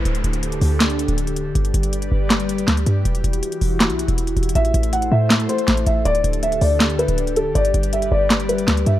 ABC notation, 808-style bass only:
X:1
M:4/4
L:1/16
Q:1/4=160
K:Dmix
V:1 name="808-style bass" clef=bass
D,,,2 D,,,4 D,,4- D,, D,,,4- D,,, | G,,,2 G,,,4 G,,,6 D,,2 G,,2 | E,,,2 E,,,2 z2 E,,,3 B,,,2 E,,,3 E,,,2 | A,,,2 A,,,4 A,,4 z2 A,,,2 A,,,2 |
D,,,2 D,,,4 D,,4- D,, D,,,4- D,,, | G,,,2 G,,,4 G,,,6 D,,2 G,,2 |]